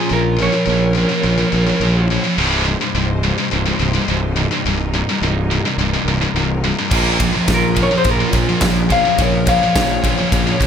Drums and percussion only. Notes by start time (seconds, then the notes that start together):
6.91 kick, crash
7.20 kick, ride
7.48 kick, snare, ride
7.76 kick, ride
8.04 kick, ride
8.33 kick, ride
8.61 kick, snare, ride
8.90 kick, ride
9.18 kick, ride
9.47 kick, ride
9.76 kick, snare, ride
10.04 kick, ride
10.32 kick, ride
10.61 kick, ride